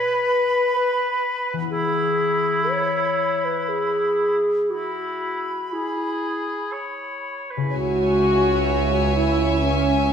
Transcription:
0.00 0.76 B4 medium
0.00 1.54 B4 medium
0.00 1.48 B5 soft
0.76 1.23 B4 medium
1.53 5.43 E3 soft
1.58 5.48 B3 soft
1.62 5.52 E4 soft
1.67 5.57 B4 soft
1.71 4.37 E4 medium
1.71 2.71 G#4 medium
1.71 4.37 B5 soft
2.70 3.46 C#5 medium
3.45 3.70 B4 soft
3.69 4.72 G#4 medium
4.70 5.59 E4 soft
4.70 5.74 F#4 soft
4.70 7.38 B5 soft
5.72 6.74 E4 soft
5.72 6.74 G#4 soft
6.73 7.52 C#5 soft
7.51 7.75 B4 soft
7.57 10.13 C#3 soft
7.62 10.13 E4 soft
7.66 10.13 G#4 soft
7.70 10.13 C#2 soft
7.70 10.13 C#5 soft
7.70 10.13 G#5 soft
7.74 10.13 C#2 soft
7.74 9.14 F#4 medium
7.74 10.13 C#5 soft
7.74 10.13 E5 soft
9.18 9.65 E4 medium
9.66 10.12 C#4 medium

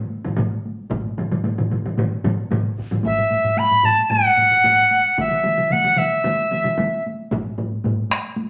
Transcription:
0.10 taiko high soft
0.23 taiko low-mid medium
0.23 taiko mid medium
0.23 taiko high soft
0.37 taiko medium
0.37 taiko low-mid medium
0.37 taiko mid medium
0.37 taiko high medium
0.52 taiko high soft
0.65 taiko high soft
0.78 taiko high soft
0.90 taiko loud
0.90 taiko low-mid medium
0.90 taiko mid medium
0.90 taiko high medium
1.05 taiko high soft
1.17 taiko low-mid medium
1.17 taiko mid medium
1.17 taiko high soft
1.32 taiko low-mid medium
1.32 taiko mid medium
1.32 taiko high soft
1.44 taiko low-mid medium
1.44 taiko mid medium
1.44 taiko high medium
1.58 taiko low-mid medium
1.58 taiko mid medium
1.58 taiko high soft
1.71 taiko low-mid medium
1.71 taiko mid medium
1.71 taiko high soft
1.83 taiko low-mid medium
1.83 taiko mid medium
1.83 taiko high soft
1.98 taiko low-mid medium
1.98 taiko mid medium
1.98 taiko high medium
2.11 taiko high soft
2.24 taiko low-mid loud
2.24 taiko mid medium
2.24 taiko high medium
2.38 taiko high soft
2.51 taiko low-mid medium
2.51 taiko mid medium
2.51 taiko high medium
2.64 taiko high soft
2.78 taiko medium
2.91 taiko low-mid medium
2.91 taiko mid medium
2.91 taiko high soft
3.03 3.60 E5 medium
3.03 taiko medium
3.03 taiko low-mid medium
3.03 taiko high medium
3.18 taiko low-mid medium
3.18 taiko high soft
3.31 taiko low-mid medium
3.31 taiko high medium
3.44 taiko low-mid medium
3.57 3.87 B5 medium
3.57 taiko low-mid medium
3.57 taiko high medium
3.71 taiko low-mid medium
3.71 taiko high soft
3.83 4.12 A5 medium
3.83 taiko low-mid medium
3.83 taiko high soft
3.98 taiko high soft
4.10 5.18 F#5 medium
4.10 taiko low-mid medium
4.10 taiko high medium
4.25 taiko high soft
4.37 taiko low-mid medium
4.37 taiko high soft
4.51 taiko low-mid medium
4.64 taiko low-mid medium
4.64 taiko high medium
4.91 taiko high soft
5.05 taiko high soft
5.18 5.74 E5 medium
5.18 taiko medium
5.18 taiko mid medium
5.18 taiko high medium
5.31 taiko mid medium
5.31 taiko high soft
5.43 taiko mid medium
5.43 taiko high soft
5.57 taiko mid medium
5.57 taiko high soft
5.70 6.00 F#5 medium
5.70 taiko mid medium
5.70 taiko high medium
5.84 taiko mid medium
5.84 taiko high soft
5.96 7.05 E5 medium
5.96 taiko mid medium
5.96 taiko high soft
6.12 taiko high soft
6.24 taiko mid medium
6.24 taiko high medium
6.40 taiko high soft
6.51 taiko mid medium
6.51 taiko high soft
6.64 taiko mid medium
6.64 taiko high soft
6.78 taiko mid medium
6.78 taiko high medium
7.06 taiko high soft
7.19 taiko high soft
7.31 taiko loud
7.31 taiko low-mid medium
7.31 taiko high medium
7.44 taiko high soft
7.58 taiko low-mid medium
7.58 taiko high soft
7.72 taiko high soft
7.84 taiko low-mid medium
7.84 taiko high medium
7.98 taiko high soft
8.10 taiko rim medium
8.10 taiko high soft
8.23 taiko high soft
8.36 taiko high medium

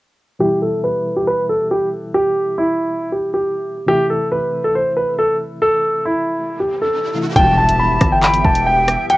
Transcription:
0.39 3.84 B2 medium
0.39 3.84 E3 medium
0.39 3.84 G3 medium
0.39 3.85 E4 medium
0.39 0.57 G4 loud
0.62 0.78 A4 medium
0.84 1.14 B4 medium
1.16 1.25 G4 medium
1.27 1.44 B4 medium
1.49 1.65 A4 medium
1.71 1.87 G4 medium
2.14 2.55 G4 loud
2.58 3.09 E4 medium
3.12 3.28 G4 medium
3.34 3.85 G4 medium
3.86 7.09 C3 medium
3.86 7.10 E3 medium
3.86 7.10 A3 medium
3.86 7.10 E4 medium
3.86 4.05 G4 loud
4.10 4.26 A4 medium
4.32 4.62 B4 medium
4.64 4.72 A4 medium
4.75 4.92 C5 medium
4.97 5.13 B4 medium
5.19 5.35 A4 medium
5.62 6.03 A4 loud
5.62 riser medium
6.05 6.57 E4 medium
6.60 6.76 G4 medium
6.82 7.33 A4 medium
7.14 7.36 C3 medium
7.14 7.34 E3 soft
7.14 7.36 A3 soft
7.14 7.36 E4 soft
7.35 7.99 E1 loud
7.35 9.18 B2 medium
7.35 9.18 E3 medium
7.35 9.18 G3 medium
7.35 9.18 B3 medium
7.35 9.18 E4 medium
7.35 9.18 G4 medium
7.35 9.18 E5 medium
7.35 7.52 G5 loud
7.35 8.19 A5 loud
7.35 kick loud
7.35 closed hi-hat medium
7.35 impact medium
7.58 7.74 A5 medium
7.69 closed hi-hat medium
7.80 8.10 B5 medium
8.01 8.43 G1 loud
8.01 kick loud
8.01 cross-stick loud
8.01 closed hi-hat medium
8.12 8.20 G5 medium
8.23 9.06 G5 medium
8.23 8.39 B5 medium
8.23 clap loud
8.23 closed hi-hat soft
8.34 closed hi-hat medium
8.45 8.97 E1 loud
8.45 8.61 A5 medium
8.45 kick medium
8.55 closed hi-hat medium
8.67 8.83 G5 medium
8.88 cross-stick loud
8.88 closed hi-hat medium
9.10 9.18 F#5 loud
9.10 9.18 G5 loud
9.10 closed hi-hat medium

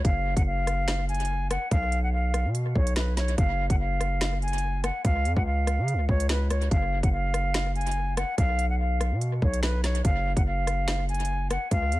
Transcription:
0.05 0.35 F#1 loud
0.05 0.35 F5 loud
0.05 kick loud
0.05 closed hi-hat medium
0.37 1.58 F#1 loud
0.37 0.45 F#5 medium
0.37 kick loud
0.37 closed hi-hat medium
0.47 1.05 F5 medium
0.67 cross-stick medium
0.67 closed hi-hat medium
0.88 finger snap medium
0.88 snare loud
0.88 closed hi-hat medium
1.09 1.48 G#5 medium
1.09 closed hi-hat soft
1.14 closed hi-hat medium
1.20 closed hi-hat medium
1.25 closed hi-hat medium
1.51 1.69 F#5 medium
1.51 cross-stick loud
1.51 closed hi-hat medium
1.71 2.46 B1 loud
1.71 2.01 F5 loud
1.71 kick loud
1.71 closed hi-hat medium
1.92 closed hi-hat medium
2.03 2.12 F#5 medium
2.13 2.48 F5 medium
2.34 cross-stick medium
2.34 closed hi-hat medium
2.45 2.74 B2 loud
2.55 closed hi-hat medium
2.75 3.36 B1 loud
2.75 2.94 C#5 medium
2.75 kick medium
2.87 closed hi-hat medium
2.96 3.15 B4 medium
2.96 finger snap loud
2.96 snare loud
3.17 3.36 C#5 medium
3.17 snare medium
3.17 closed hi-hat medium
3.28 closed hi-hat medium
3.38 3.69 F#1 loud
3.38 3.68 F5 loud
3.38 kick loud
3.38 closed hi-hat medium
3.70 4.91 F#1 loud
3.70 3.78 F#5 medium
3.70 kick loud
3.70 closed hi-hat medium
3.80 4.38 F5 medium
4.01 cross-stick medium
4.01 closed hi-hat medium
4.21 finger snap medium
4.21 snare loud
4.21 closed hi-hat medium
4.42 4.81 G#5 medium
4.42 closed hi-hat soft
4.48 closed hi-hat medium
4.53 closed hi-hat medium
4.58 closed hi-hat medium
4.84 5.02 F#5 medium
4.84 cross-stick loud
4.84 closed hi-hat medium
5.05 5.27 C#2 loud
5.05 5.35 F5 loud
5.05 kick loud
5.05 closed hi-hat medium
5.25 5.36 F2 loud
5.25 closed hi-hat medium
5.36 5.80 C#2 loud
5.36 5.45 F#5 medium
5.36 kick loud
5.46 6.05 F5 medium
5.67 cross-stick medium
5.67 closed hi-hat medium
5.78 5.95 C#3 loud
5.88 closed hi-hat medium
5.94 6.08 C#2 loud
6.09 6.69 C#2 loud
6.09 6.27 C#5 medium
6.09 kick medium
6.20 closed hi-hat loud
6.29 6.48 B4 medium
6.29 finger snap medium
6.29 snare loud
6.50 6.69 C#5 medium
6.50 cross-stick loud
6.50 closed hi-hat medium
6.62 closed hi-hat soft
6.71 7.02 F#1 loud
6.71 7.01 F5 loud
6.71 kick loud
6.71 closed hi-hat medium
7.03 8.24 F#1 loud
7.03 7.12 F#5 medium
7.03 kick loud
7.03 closed hi-hat medium
7.13 7.72 F5 medium
7.34 cross-stick medium
7.34 closed hi-hat medium
7.54 finger snap medium
7.54 snare loud
7.54 closed hi-hat medium
7.76 8.15 G#5 medium
7.76 closed hi-hat soft
7.81 closed hi-hat medium
7.87 closed hi-hat medium
7.91 closed hi-hat medium
8.17 8.36 F#5 medium
8.17 cross-stick loud
8.17 closed hi-hat medium
8.38 9.13 B1 loud
8.38 8.68 F5 loud
8.38 kick loud
8.38 closed hi-hat medium
8.59 closed hi-hat medium
8.70 8.79 F#5 medium
8.80 9.18 F5 medium
9.01 cross-stick medium
9.01 closed hi-hat medium
9.12 9.41 B2 loud
9.21 closed hi-hat medium
9.42 10.02 B1 loud
9.42 9.61 C#5 medium
9.42 kick medium
9.54 closed hi-hat medium
9.63 9.81 B4 medium
9.63 finger snap loud
9.63 snare loud
9.84 10.02 C#5 medium
9.84 snare medium
9.84 closed hi-hat medium
9.95 closed hi-hat medium
10.05 10.35 F#1 loud
10.05 10.35 F5 loud
10.05 kick loud
10.05 closed hi-hat medium
10.37 11.58 F#1 loud
10.37 10.45 F#5 medium
10.37 kick loud
10.37 closed hi-hat medium
10.46 11.05 F5 medium
10.67 cross-stick medium
10.67 closed hi-hat medium
10.88 finger snap medium
10.88 snare loud
10.88 closed hi-hat medium
11.09 11.48 G#5 medium
11.09 closed hi-hat soft
11.14 closed hi-hat medium
11.20 closed hi-hat medium
11.25 closed hi-hat medium
11.51 11.69 F#5 medium
11.51 cross-stick loud
11.51 closed hi-hat medium
11.71 11.94 C#2 loud
11.71 12.00 F5 loud
11.71 kick loud
11.71 closed hi-hat medium
11.92 12.00 F2 loud
11.92 closed hi-hat medium

